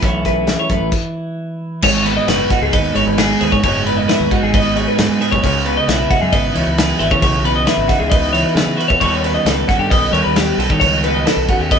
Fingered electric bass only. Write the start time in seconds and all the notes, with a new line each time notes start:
0.02 B1
0.70 F#2
0.81 A1
1.83 G#1
2.28 F#1
2.62 C#2
2.73 D#2
2.96 G#1
3.07 G#1
3.41 D#2
3.52 G#2
3.63 F#1
4.20 D#2
4.43 G#1
4.99 G#2
5.09 G#2
5.33 B1
5.44 C#2
5.88 B1
6.22 F#2
6.33 G#1
6.56 C#2
6.66 C#2
7.00 G#1
7.11 C#3
7.22 B1
7.77 G#1
8.00 C#2
8.55 C#3
8.67 C#3
8.90 E2
9.02 D#2
9.45 C#2
9.79 G2
9.91 B1
10.13 D#2
10.26 D#2
10.58 B1
10.70 D#3
10.81 C#2
11.37 B1
11.59 D#2